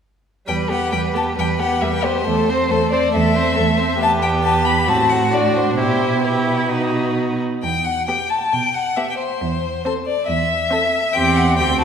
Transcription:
0.47 E2 G3 B4 G5
0.69 B3 G4 F#5
0.92 E2 G3 B4 G5
1.14 B3 G4 A5
1.37 E2 G3 B4 G5
1.59 B3 G4 F#5
1.82 E2 G3 B4 E5
1.94 G5
2.03 B3 G4 C5
2.26 E2 A3 A4
2.49 C4 C5
2.70 E2 A3 A4 C5
2.91 C4 C5 D5
3.12 E2 A3 A4 E5
3.34 C4 C5
3.55 E2 A3 A4
3.77 C4 C5
4.00 E2 B3 G4 A5
4.22 G5
4.43 A5
4.65 B5
4.87 A2 C4 F#4 A5
5.09 F#5
5.32 D4 D5
5.56 C5
5.77 B2 E4 G4 C5
6.23 E4 G4 B4
6.69 D#4 F#4
7.63 E2 G5
7.84 F#5
8.06 B3 G4 G5
8.30 A5
8.53 B2 G5
8.74 F#5
8.96 B3 G4 E5
9.10 G5
9.19 C5
9.41 E2
9.85 C4 A4 C5
10.07 D5
10.27 E2 E5
10.71 C4 A4
11.13 E2 C4 G4 G5
11.36 F#5
11.57 D2 C4 G4 G5
11.78 F#4 A5

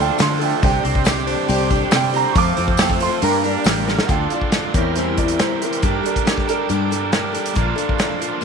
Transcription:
Already playing: F3 A3 D4 F4 A4 D5 G5
0.00 D4 F4 G5
0.18 D3 A3 D4 F4 A4, snare, open hi-hat, tambourine
0.22 C6
0.39 A3 D4 F4 A4, open hi-hat
0.44 G5
0.62 C2 C3 D3 G3 C4 D4 G4 C5 D5 G5, kick, open hi-hat
0.83 C2 C4 D4 G4 C5, open hi-hat
0.95 kick
1.04 C4 D4 G4 C5, snare, open hi-hat, tambourine
1.18 snare
1.27 D4 G4 C5, open hi-hat
1.49 C2 C4 D4 G4 C5 D5 G5, open hi-hat
1.70 D4 G4 C5, kick, open hi-hat
1.91 C3 G3 C4 D4 G4 C5, snare, open hi-hat, tambourine
1.95 G5
2.12 C4 D4 G4 C5, open hi-hat
2.16 A#5
2.33 F2 F3 A3 C4 F4 A4 C5 F5 A5 C#6, kick, open hi-hat
2.37 F3 A3 D6
2.57 F2 C4 F4 C5, open hi-hat
2.68 kick
2.77 A3 C4 F4 A4 C5 G5, snare, open hi-hat, tambourine
2.90 kick
3.00 C4 F4 C5 C6, open hi-hat
3.22 G2 G3 A#3 D4 G4 A#4 D5 G5 A#5, open hi-hat
3.44 D4 G4 A#4, open hi-hat
3.64 A1 G3 D4 G4, snare, open hi-hat, tambourine
3.69 A#4
3.87 A#3 D4 G4 A#4, snare
3.99 snare
4.05 D2 D3 D4 A4 F#5, kick, closed hi-hat
4.10 A3 F4 A4 D5 F5 G5 D6
4.30 D4 F4 A4 F5, closed hi-hat
4.41 kick
4.52 A3 D4 F4 A4 D5, snare, closed hi-hat
4.73 E2 E3 G3 E4 G4 A#4 C#5 E5 G5 C6, kick, closed hi-hat
4.77 C4
4.95 E3 G3 C4 E4 A#4 C5, closed hi-hat
5.17 C4 E4 A#4 D5, kick, closed hi-hat
5.28 closed hi-hat
5.39 E2 E3 G3 C4 E4 G4 A#4 C5, snare, closed hi-hat
5.62 C4 E4 A#4, closed hi-hat
5.73 closed hi-hat
5.82 G2 G3 A#3 D4 G4 A4 A#4 A5 D6, kick, closed hi-hat
6.03 D4 G4 A4 A#4, closed hi-hat
6.16 kick, closed hi-hat
6.25 A#3 D4 G4 A4, snare, closed hi-hat
6.38 kick, snare
6.47 G3 D4 G4 A4 A#4, closed hi-hat
6.69 G2 G3 A#3 D4 G4 A4, closed hi-hat
6.91 D4 G4 A4, closed hi-hat
7.12 G3 A#3 D4 G4 A4 A#4, snare, closed hi-hat
7.33 D4 G4 A4, closed hi-hat
7.46 closed hi-hat
7.53 A#1 A#2 F3 A#3 D4 F4 A4 F5, kick, closed hi-hat
7.58 A#4
7.76 D4 F4 A4, closed hi-hat
7.89 kick
7.98 A#3 D4 F4 A4, snare, closed hi-hat
8.20 A#2 F3 A#3 D4 F4 A4 A#4, closed hi-hat
8.41 A#3

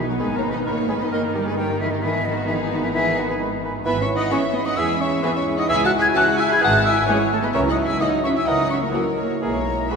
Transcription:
Already playing: B1 F#3 B3 D#4 E4
0.09 F#3 F#4 A#4 F#5
0.19 G#1 D#3 G#3 B3 G#4 B4 G#5
0.35 A#3 A#4 C#5 A#5
0.42 D#3 B4
0.50 B3 B4 D#5 B5
0.65 D#3 A#3 A#4 B4 C#5 A#5
0.88 D#3 G#3 G#4 B4 G#5
1.00 B3 B4 D#5 B5
1.11 G1 D#3 A#3 A#4 D#5 A#5
1.34 D#3 G3 G4 A#4 G5
1.46 G#3 G#4 B4 G#5
1.56 D#3 G3 G4 A#4 G5
1.80 D#3 E3 E4 G#4 A#4 E5
1.91 D#3 D#4 G4 D#5
2.02 G#1 D#3 E3 B3 D#4 E4 G#4 B4 E5
2.26 D#3 D#4 F#4 B4 D#5
2.48 D#3 E3 E4 G#4 B4 E5
2.70 D#3 D#4 F#4 B4 D#5
2.83 E3 E4 G#4 E5
2.94 D#3 E3 E4 G#4 B4 E5
3.15 D#3 D#4 F#4 D#5
3.20 B4
3.28 G#3 G#4 B4 G#5
3.40 D#3 B4
3.63 D#3 B4
3.85 G#1 E3 B3 E4 B4 E5 B5
4.00 C#4 C#5 E5 C#6
4.15 D#4 D#5 F#5 D#6
4.31 E3 B3 C#4 G#4 C#5 E5 C#6
4.53 B3 B4 D#5 B5
4.65 D#4 D#5 F#5 D#6
4.76 E2 E3 G#3 E4 G#4 E5 G#5 E6
4.99 C#4 C#5 E5 C#6
5.22 E3 G#3 B3 E4 G#4 B4 E5 B5
5.34 C#4 C#5 E5 C#6
5.57 D#4 D#5 F#5 D#6
5.68 C#2 E3 G#3 E4 G#4 E5 G#5 E6
5.84 F#4 F#5 A5 F#6
5.99 G#4 G#5 B5 G#6
6.14 E3 C#4 F#4 G#4 F#5 A5 F#6
6.37 E4 E5 G#5 E6
6.49 G#4 G#5 B5 G#6
6.61 G#1 E3 F#4 G#4 F#5 A5 F#6
6.84 E4 E5 G#5 E6
7.07 E3 G#3 C#4 E4 G#4 C#5 G#5
7.31 A3 A4 C#5 A5
7.42 B3 B4 D#5 B5
7.53 C#2 E3 F#3 C#4 E4 A#4 C#5 E5 C#6
7.69 D#4 D#5 F#5 D#6
7.85 E4 E5 G#5 E6
8.00 E3 A#3 D#4 F#4 D#5 F#5 D#6
8.23 C#4 C#5 E5 C#6
8.35 E4 E5 G#5 E6
8.46 C#2 E3 D#4 A#4 D#5 F#5 D#6
8.69 C#4 C#5 E5 C#6
8.82 A#3 A#4 C#5 A#5
8.92 E3 F#3 A#3 E4 F#4 A#4 F#5
9.17 A#3 A#4 C#5 A#5
9.41 B1 E3 G#3 A#3 E4 G#4 A#4 C#5 A#5
9.90 E3 G#3 B3 E4 F#4 G#4 B4 E5 B5

